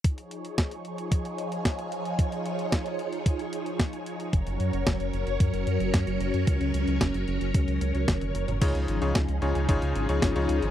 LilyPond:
<<
  \new Staff \with { instrumentName = "Electric grand piano" } { \time 4/4 \key des \major \tempo 4 = 112 r1 | r1 | r1 | r1 |
<des ees' f' aes' des''>8. <des ees' f' aes' des''>16 r8 <des ees' f' aes' des''>8 <des ees' f' aes' des''>8. <des ees' f' aes' des''>8 <des ees' f' aes' des''>8. | }
  \new Staff \with { instrumentName = "String machine" } { \time 4/4 \key des \major <f ees' aes' des''>1~ | <f ees' aes' des''>1 | <ges des' bes' des''>1~ | <ges des' bes' des''>1 |
<f des' ees' aes'>1 | }
  \new Staff \with { instrumentName = "Analog synth bass" } { \clef bass \time 4/4 \key des \major r1 | r1 | ges,,16 ges,,16 ges,16 ges,,16 ges,,16 ges,,16 ges,,16 ges,,16 ges,16 ges,,16 ges,16 ges,,16 ges,16 ges,,16 ges,,16 ges,16 | des,16 des,16 des,16 des,16 ges,,16 ges,,16 ges,,16 ges,,16 des,16 des,16 des,16 des,16 ges,,16 ges,,16 ges,,16 ges,,16 |
des,16 des,16 aes,,16 des,16 des,16 des,16 des,16 des,16 aes,,16 des,16 aes,,16 des,16 aes,,16 des,16 des,16 aes,,16 | }
  \new DrumStaff \with { instrumentName = "Drums" } \drummode { \time 4/4 <hh bd>16 hh16 hh16 hh16 <hh bd sn>16 hh16 hh16 hh16 <hh bd>16 hh16 hh16 hh16 <hh bd sn>16 hh16 hh16 hh16 | <hh bd>16 hh16 hh16 hh16 <hh bd sn>16 hh16 hh16 hh16 <hh bd>16 hh16 hh16 hh16 <hh bd sn>16 hh16 hh16 hh16 | <hh bd>16 hh16 hh16 hh16 <hh bd sn>16 hh16 hh16 hh16 <hh bd>16 hh16 hh16 hh16 <hh bd sn>16 hh16 hh16 hh16 | <hh bd>16 hh16 hh16 hh16 <hh bd sn>16 hh16 hh16 hh16 <hh bd>16 hh16 hh16 hh16 <hh bd sn tommh>16 <hh tommh>16 hh16 <hh toml>16 |
<cymc hh bd>16 hh16 hh16 hh16 <hh bd sn>16 hh16 hh16 hh16 <hh bd>16 hh16 hh16 hh16 <hh bd sn>16 hh16 hh16 hh16 | }
>>